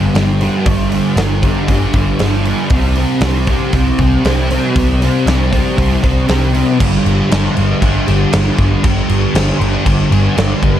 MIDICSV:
0, 0, Header, 1, 4, 480
1, 0, Start_track
1, 0, Tempo, 510204
1, 624, Time_signature, 4, 2, 24, 8
1, 10159, End_track
2, 0, Start_track
2, 0, Title_t, "Distorted electric guitar"
2, 0, Program_c, 0, 30
2, 0, Note_on_c, 0, 43, 92
2, 0, Note_on_c, 0, 50, 61
2, 0, Note_on_c, 0, 55, 66
2, 128, Note_off_c, 0, 43, 0
2, 138, Note_off_c, 0, 50, 0
2, 139, Note_on_c, 0, 43, 75
2, 150, Note_on_c, 0, 50, 69
2, 154, Note_off_c, 0, 55, 0
2, 158, Note_on_c, 0, 55, 74
2, 378, Note_off_c, 0, 55, 0
2, 382, Note_on_c, 0, 55, 68
2, 386, Note_off_c, 0, 50, 0
2, 398, Note_on_c, 0, 50, 53
2, 614, Note_off_c, 0, 43, 0
2, 623, Note_off_c, 0, 50, 0
2, 625, Note_on_c, 0, 43, 95
2, 634, Note_on_c, 0, 50, 100
2, 642, Note_off_c, 0, 55, 0
2, 645, Note_on_c, 0, 55, 113
2, 864, Note_off_c, 0, 55, 0
2, 868, Note_on_c, 0, 55, 65
2, 877, Note_off_c, 0, 50, 0
2, 888, Note_on_c, 0, 50, 53
2, 1100, Note_off_c, 0, 43, 0
2, 1107, Note_off_c, 0, 50, 0
2, 1112, Note_on_c, 0, 43, 66
2, 1118, Note_on_c, 0, 50, 72
2, 1126, Note_off_c, 0, 55, 0
2, 1130, Note_on_c, 0, 55, 81
2, 1343, Note_off_c, 0, 55, 0
2, 1346, Note_on_c, 0, 55, 65
2, 1355, Note_off_c, 0, 50, 0
2, 1367, Note_on_c, 0, 50, 59
2, 1577, Note_off_c, 0, 43, 0
2, 1587, Note_off_c, 0, 50, 0
2, 1589, Note_on_c, 0, 43, 92
2, 1598, Note_on_c, 0, 50, 98
2, 1607, Note_off_c, 0, 55, 0
2, 1611, Note_on_c, 0, 55, 103
2, 1824, Note_off_c, 0, 55, 0
2, 1828, Note_on_c, 0, 55, 72
2, 1836, Note_off_c, 0, 50, 0
2, 1847, Note_on_c, 0, 50, 57
2, 2063, Note_off_c, 0, 43, 0
2, 2072, Note_off_c, 0, 50, 0
2, 2074, Note_on_c, 0, 43, 69
2, 2084, Note_on_c, 0, 50, 76
2, 2086, Note_off_c, 0, 55, 0
2, 2090, Note_on_c, 0, 55, 87
2, 2313, Note_off_c, 0, 55, 0
2, 2317, Note_on_c, 0, 55, 70
2, 2325, Note_off_c, 0, 50, 0
2, 2336, Note_on_c, 0, 50, 61
2, 2537, Note_off_c, 0, 43, 0
2, 2547, Note_off_c, 0, 50, 0
2, 2551, Note_on_c, 0, 48, 101
2, 2554, Note_off_c, 0, 55, 0
2, 2557, Note_on_c, 0, 55, 99
2, 2565, Note_on_c, 0, 60, 114
2, 2794, Note_off_c, 0, 60, 0
2, 2798, Note_on_c, 0, 60, 68
2, 2812, Note_off_c, 0, 55, 0
2, 2816, Note_on_c, 0, 55, 56
2, 3032, Note_off_c, 0, 48, 0
2, 3035, Note_on_c, 0, 48, 71
2, 3041, Note_off_c, 0, 55, 0
2, 3045, Note_on_c, 0, 55, 87
2, 3050, Note_off_c, 0, 60, 0
2, 3053, Note_on_c, 0, 60, 78
2, 3277, Note_off_c, 0, 60, 0
2, 3281, Note_on_c, 0, 60, 70
2, 3293, Note_off_c, 0, 55, 0
2, 3296, Note_on_c, 0, 55, 62
2, 3509, Note_off_c, 0, 48, 0
2, 3512, Note_on_c, 0, 48, 99
2, 3521, Note_off_c, 0, 55, 0
2, 3523, Note_off_c, 0, 60, 0
2, 3525, Note_on_c, 0, 55, 91
2, 3534, Note_on_c, 0, 60, 95
2, 3748, Note_off_c, 0, 60, 0
2, 3759, Note_on_c, 0, 60, 68
2, 3776, Note_off_c, 0, 55, 0
2, 3780, Note_on_c, 0, 55, 59
2, 3986, Note_off_c, 0, 48, 0
2, 3997, Note_on_c, 0, 48, 69
2, 4001, Note_off_c, 0, 55, 0
2, 4002, Note_off_c, 0, 60, 0
2, 4004, Note_on_c, 0, 55, 76
2, 4013, Note_on_c, 0, 60, 85
2, 4227, Note_off_c, 0, 60, 0
2, 4238, Note_on_c, 0, 60, 78
2, 4251, Note_off_c, 0, 55, 0
2, 4254, Note_on_c, 0, 55, 53
2, 4465, Note_off_c, 0, 48, 0
2, 4473, Note_off_c, 0, 55, 0
2, 4476, Note_on_c, 0, 48, 102
2, 4484, Note_off_c, 0, 60, 0
2, 4484, Note_on_c, 0, 55, 109
2, 4495, Note_on_c, 0, 60, 104
2, 4707, Note_off_c, 0, 60, 0
2, 4718, Note_on_c, 0, 60, 73
2, 4731, Note_off_c, 0, 55, 0
2, 4742, Note_on_c, 0, 55, 57
2, 4945, Note_off_c, 0, 48, 0
2, 4957, Note_on_c, 0, 48, 75
2, 4958, Note_off_c, 0, 55, 0
2, 4962, Note_off_c, 0, 60, 0
2, 4969, Note_on_c, 0, 55, 81
2, 4974, Note_on_c, 0, 60, 86
2, 5184, Note_off_c, 0, 60, 0
2, 5195, Note_on_c, 0, 60, 75
2, 5201, Note_off_c, 0, 55, 0
2, 5213, Note_on_c, 0, 55, 55
2, 5416, Note_off_c, 0, 48, 0
2, 5424, Note_off_c, 0, 55, 0
2, 5427, Note_on_c, 0, 48, 89
2, 5432, Note_off_c, 0, 60, 0
2, 5435, Note_on_c, 0, 55, 100
2, 5444, Note_on_c, 0, 60, 99
2, 5663, Note_off_c, 0, 60, 0
2, 5674, Note_on_c, 0, 60, 77
2, 5678, Note_off_c, 0, 55, 0
2, 5690, Note_on_c, 0, 55, 57
2, 5894, Note_off_c, 0, 48, 0
2, 5905, Note_off_c, 0, 55, 0
2, 5905, Note_on_c, 0, 48, 73
2, 5914, Note_off_c, 0, 60, 0
2, 5916, Note_on_c, 0, 55, 80
2, 5925, Note_on_c, 0, 60, 80
2, 6136, Note_off_c, 0, 60, 0
2, 6147, Note_on_c, 0, 60, 66
2, 6157, Note_off_c, 0, 55, 0
2, 6169, Note_on_c, 0, 55, 53
2, 6376, Note_off_c, 0, 48, 0
2, 6377, Note_off_c, 0, 60, 0
2, 6387, Note_on_c, 0, 43, 99
2, 6388, Note_off_c, 0, 55, 0
2, 6394, Note_on_c, 0, 50, 105
2, 6402, Note_on_c, 0, 55, 111
2, 6858, Note_off_c, 0, 43, 0
2, 6860, Note_off_c, 0, 50, 0
2, 6862, Note_on_c, 0, 43, 75
2, 6871, Note_on_c, 0, 50, 78
2, 6877, Note_off_c, 0, 55, 0
2, 6881, Note_on_c, 0, 55, 90
2, 7101, Note_off_c, 0, 55, 0
2, 7104, Note_on_c, 0, 55, 84
2, 7111, Note_off_c, 0, 50, 0
2, 7122, Note_on_c, 0, 50, 63
2, 7345, Note_off_c, 0, 43, 0
2, 7346, Note_off_c, 0, 50, 0
2, 7349, Note_on_c, 0, 43, 80
2, 7358, Note_on_c, 0, 50, 93
2, 7362, Note_off_c, 0, 55, 0
2, 7366, Note_on_c, 0, 55, 89
2, 7583, Note_off_c, 0, 55, 0
2, 7587, Note_on_c, 0, 55, 80
2, 7592, Note_off_c, 0, 50, 0
2, 7603, Note_on_c, 0, 50, 61
2, 7819, Note_off_c, 0, 43, 0
2, 7828, Note_off_c, 0, 50, 0
2, 7830, Note_on_c, 0, 43, 75
2, 7840, Note_on_c, 0, 50, 86
2, 7845, Note_off_c, 0, 55, 0
2, 7849, Note_on_c, 0, 55, 88
2, 8300, Note_off_c, 0, 43, 0
2, 8307, Note_off_c, 0, 50, 0
2, 8311, Note_on_c, 0, 43, 101
2, 8319, Note_on_c, 0, 50, 101
2, 8321, Note_off_c, 0, 55, 0
2, 8325, Note_on_c, 0, 55, 112
2, 8784, Note_off_c, 0, 43, 0
2, 8792, Note_off_c, 0, 50, 0
2, 8796, Note_on_c, 0, 43, 78
2, 8803, Note_on_c, 0, 50, 92
2, 8809, Note_off_c, 0, 55, 0
2, 8813, Note_on_c, 0, 55, 88
2, 9025, Note_off_c, 0, 55, 0
2, 9028, Note_on_c, 0, 55, 76
2, 9034, Note_off_c, 0, 50, 0
2, 9046, Note_on_c, 0, 50, 61
2, 9263, Note_off_c, 0, 43, 0
2, 9274, Note_off_c, 0, 50, 0
2, 9274, Note_on_c, 0, 43, 87
2, 9285, Note_on_c, 0, 50, 91
2, 9288, Note_off_c, 0, 55, 0
2, 9292, Note_on_c, 0, 55, 80
2, 9504, Note_off_c, 0, 55, 0
2, 9508, Note_on_c, 0, 55, 80
2, 9518, Note_off_c, 0, 50, 0
2, 9529, Note_on_c, 0, 50, 65
2, 9736, Note_off_c, 0, 43, 0
2, 9747, Note_on_c, 0, 43, 72
2, 9749, Note_off_c, 0, 50, 0
2, 9761, Note_on_c, 0, 50, 77
2, 9764, Note_off_c, 0, 55, 0
2, 9767, Note_on_c, 0, 55, 94
2, 10159, Note_off_c, 0, 43, 0
2, 10159, Note_off_c, 0, 50, 0
2, 10159, Note_off_c, 0, 55, 0
2, 10159, End_track
3, 0, Start_track
3, 0, Title_t, "Picked electric bass"
3, 0, Program_c, 1, 34
3, 134, Note_on_c, 1, 31, 84
3, 445, Note_off_c, 1, 31, 0
3, 620, Note_on_c, 1, 31, 90
3, 929, Note_off_c, 1, 31, 0
3, 1096, Note_on_c, 1, 31, 93
3, 1407, Note_off_c, 1, 31, 0
3, 1581, Note_on_c, 1, 31, 95
3, 1736, Note_off_c, 1, 31, 0
3, 1825, Note_on_c, 1, 31, 82
3, 1979, Note_off_c, 1, 31, 0
3, 2065, Note_on_c, 1, 31, 76
3, 2374, Note_off_c, 1, 31, 0
3, 2547, Note_on_c, 1, 36, 83
3, 2855, Note_off_c, 1, 36, 0
3, 3018, Note_on_c, 1, 36, 90
3, 3329, Note_off_c, 1, 36, 0
3, 3510, Note_on_c, 1, 36, 87
3, 3664, Note_off_c, 1, 36, 0
3, 3749, Note_on_c, 1, 36, 87
3, 3904, Note_off_c, 1, 36, 0
3, 3986, Note_on_c, 1, 36, 76
3, 4295, Note_off_c, 1, 36, 0
3, 4476, Note_on_c, 1, 36, 83
3, 4783, Note_off_c, 1, 36, 0
3, 4949, Note_on_c, 1, 36, 89
3, 5258, Note_off_c, 1, 36, 0
3, 5441, Note_on_c, 1, 36, 85
3, 5593, Note_off_c, 1, 36, 0
3, 5684, Note_on_c, 1, 36, 85
3, 5835, Note_off_c, 1, 36, 0
3, 5918, Note_on_c, 1, 36, 79
3, 6224, Note_off_c, 1, 36, 0
3, 6401, Note_on_c, 1, 31, 96
3, 6546, Note_off_c, 1, 31, 0
3, 6633, Note_on_c, 1, 31, 95
3, 6781, Note_off_c, 1, 31, 0
3, 6886, Note_on_c, 1, 31, 87
3, 7029, Note_off_c, 1, 31, 0
3, 7125, Note_on_c, 1, 31, 93
3, 7269, Note_off_c, 1, 31, 0
3, 7357, Note_on_c, 1, 31, 99
3, 7503, Note_off_c, 1, 31, 0
3, 7605, Note_on_c, 1, 31, 88
3, 7748, Note_off_c, 1, 31, 0
3, 7841, Note_on_c, 1, 31, 83
3, 7986, Note_off_c, 1, 31, 0
3, 8078, Note_on_c, 1, 31, 91
3, 8223, Note_off_c, 1, 31, 0
3, 8312, Note_on_c, 1, 31, 90
3, 8459, Note_off_c, 1, 31, 0
3, 8557, Note_on_c, 1, 31, 89
3, 8702, Note_off_c, 1, 31, 0
3, 8790, Note_on_c, 1, 31, 92
3, 8937, Note_off_c, 1, 31, 0
3, 9031, Note_on_c, 1, 31, 90
3, 9177, Note_off_c, 1, 31, 0
3, 9276, Note_on_c, 1, 31, 98
3, 9420, Note_off_c, 1, 31, 0
3, 9514, Note_on_c, 1, 31, 90
3, 9659, Note_off_c, 1, 31, 0
3, 9758, Note_on_c, 1, 31, 86
3, 9901, Note_off_c, 1, 31, 0
3, 9994, Note_on_c, 1, 31, 95
3, 10138, Note_off_c, 1, 31, 0
3, 10159, End_track
4, 0, Start_track
4, 0, Title_t, "Drums"
4, 144, Note_on_c, 9, 46, 73
4, 152, Note_on_c, 9, 38, 99
4, 238, Note_off_c, 9, 46, 0
4, 246, Note_off_c, 9, 38, 0
4, 384, Note_on_c, 9, 46, 56
4, 478, Note_off_c, 9, 46, 0
4, 621, Note_on_c, 9, 46, 84
4, 622, Note_on_c, 9, 36, 116
4, 715, Note_off_c, 9, 46, 0
4, 716, Note_off_c, 9, 36, 0
4, 865, Note_on_c, 9, 46, 57
4, 959, Note_off_c, 9, 46, 0
4, 1103, Note_on_c, 9, 46, 76
4, 1111, Note_on_c, 9, 38, 117
4, 1197, Note_off_c, 9, 46, 0
4, 1205, Note_off_c, 9, 38, 0
4, 1345, Note_on_c, 9, 36, 90
4, 1348, Note_on_c, 9, 46, 59
4, 1439, Note_off_c, 9, 36, 0
4, 1442, Note_off_c, 9, 46, 0
4, 1584, Note_on_c, 9, 36, 87
4, 1586, Note_on_c, 9, 46, 77
4, 1678, Note_off_c, 9, 36, 0
4, 1680, Note_off_c, 9, 46, 0
4, 1820, Note_on_c, 9, 46, 53
4, 1824, Note_on_c, 9, 36, 89
4, 1914, Note_off_c, 9, 46, 0
4, 1918, Note_off_c, 9, 36, 0
4, 2063, Note_on_c, 9, 46, 70
4, 2072, Note_on_c, 9, 38, 97
4, 2157, Note_off_c, 9, 46, 0
4, 2166, Note_off_c, 9, 38, 0
4, 2309, Note_on_c, 9, 46, 54
4, 2403, Note_off_c, 9, 46, 0
4, 2539, Note_on_c, 9, 46, 77
4, 2545, Note_on_c, 9, 36, 116
4, 2633, Note_off_c, 9, 46, 0
4, 2639, Note_off_c, 9, 36, 0
4, 2781, Note_on_c, 9, 46, 50
4, 2875, Note_off_c, 9, 46, 0
4, 3018, Note_on_c, 9, 46, 73
4, 3026, Note_on_c, 9, 38, 109
4, 3112, Note_off_c, 9, 46, 0
4, 3120, Note_off_c, 9, 38, 0
4, 3264, Note_on_c, 9, 46, 53
4, 3268, Note_on_c, 9, 36, 88
4, 3358, Note_off_c, 9, 46, 0
4, 3363, Note_off_c, 9, 36, 0
4, 3507, Note_on_c, 9, 46, 67
4, 3510, Note_on_c, 9, 36, 84
4, 3602, Note_off_c, 9, 46, 0
4, 3604, Note_off_c, 9, 36, 0
4, 3750, Note_on_c, 9, 46, 57
4, 3752, Note_on_c, 9, 36, 85
4, 3844, Note_off_c, 9, 46, 0
4, 3846, Note_off_c, 9, 36, 0
4, 3996, Note_on_c, 9, 46, 72
4, 4005, Note_on_c, 9, 38, 99
4, 4091, Note_off_c, 9, 46, 0
4, 4099, Note_off_c, 9, 38, 0
4, 4239, Note_on_c, 9, 46, 55
4, 4333, Note_off_c, 9, 46, 0
4, 4477, Note_on_c, 9, 36, 111
4, 4479, Note_on_c, 9, 46, 79
4, 4571, Note_off_c, 9, 36, 0
4, 4574, Note_off_c, 9, 46, 0
4, 4723, Note_on_c, 9, 46, 61
4, 4817, Note_off_c, 9, 46, 0
4, 4961, Note_on_c, 9, 46, 75
4, 4969, Note_on_c, 9, 38, 111
4, 5055, Note_off_c, 9, 46, 0
4, 5063, Note_off_c, 9, 38, 0
4, 5199, Note_on_c, 9, 36, 84
4, 5203, Note_on_c, 9, 46, 64
4, 5293, Note_off_c, 9, 36, 0
4, 5297, Note_off_c, 9, 46, 0
4, 5440, Note_on_c, 9, 36, 82
4, 5443, Note_on_c, 9, 46, 72
4, 5534, Note_off_c, 9, 36, 0
4, 5537, Note_off_c, 9, 46, 0
4, 5679, Note_on_c, 9, 36, 88
4, 5679, Note_on_c, 9, 46, 56
4, 5773, Note_off_c, 9, 36, 0
4, 5773, Note_off_c, 9, 46, 0
4, 5914, Note_on_c, 9, 46, 75
4, 5923, Note_on_c, 9, 38, 106
4, 6008, Note_off_c, 9, 46, 0
4, 6017, Note_off_c, 9, 38, 0
4, 6158, Note_on_c, 9, 46, 56
4, 6252, Note_off_c, 9, 46, 0
4, 6401, Note_on_c, 9, 36, 117
4, 6403, Note_on_c, 9, 49, 126
4, 6403, Note_on_c, 9, 57, 91
4, 6495, Note_off_c, 9, 36, 0
4, 6497, Note_off_c, 9, 49, 0
4, 6497, Note_off_c, 9, 57, 0
4, 6643, Note_on_c, 9, 57, 62
4, 6737, Note_off_c, 9, 57, 0
4, 6882, Note_on_c, 9, 57, 86
4, 6891, Note_on_c, 9, 38, 114
4, 6976, Note_off_c, 9, 57, 0
4, 6985, Note_off_c, 9, 38, 0
4, 7118, Note_on_c, 9, 57, 68
4, 7212, Note_off_c, 9, 57, 0
4, 7358, Note_on_c, 9, 36, 86
4, 7360, Note_on_c, 9, 57, 82
4, 7452, Note_off_c, 9, 36, 0
4, 7454, Note_off_c, 9, 57, 0
4, 7600, Note_on_c, 9, 57, 67
4, 7694, Note_off_c, 9, 57, 0
4, 7834, Note_on_c, 9, 57, 88
4, 7842, Note_on_c, 9, 38, 112
4, 7928, Note_off_c, 9, 57, 0
4, 7936, Note_off_c, 9, 38, 0
4, 8075, Note_on_c, 9, 57, 64
4, 8077, Note_on_c, 9, 36, 88
4, 8169, Note_off_c, 9, 57, 0
4, 8171, Note_off_c, 9, 36, 0
4, 8315, Note_on_c, 9, 57, 89
4, 8317, Note_on_c, 9, 36, 124
4, 8409, Note_off_c, 9, 57, 0
4, 8412, Note_off_c, 9, 36, 0
4, 8556, Note_on_c, 9, 57, 73
4, 8650, Note_off_c, 9, 57, 0
4, 8798, Note_on_c, 9, 57, 95
4, 8806, Note_on_c, 9, 38, 111
4, 8892, Note_off_c, 9, 57, 0
4, 8901, Note_off_c, 9, 38, 0
4, 9044, Note_on_c, 9, 57, 71
4, 9138, Note_off_c, 9, 57, 0
4, 9278, Note_on_c, 9, 36, 90
4, 9279, Note_on_c, 9, 57, 87
4, 9372, Note_off_c, 9, 36, 0
4, 9373, Note_off_c, 9, 57, 0
4, 9522, Note_on_c, 9, 57, 70
4, 9616, Note_off_c, 9, 57, 0
4, 9762, Note_on_c, 9, 57, 87
4, 9770, Note_on_c, 9, 38, 118
4, 9856, Note_off_c, 9, 57, 0
4, 9864, Note_off_c, 9, 38, 0
4, 9998, Note_on_c, 9, 36, 86
4, 10005, Note_on_c, 9, 57, 60
4, 10092, Note_off_c, 9, 36, 0
4, 10099, Note_off_c, 9, 57, 0
4, 10159, End_track
0, 0, End_of_file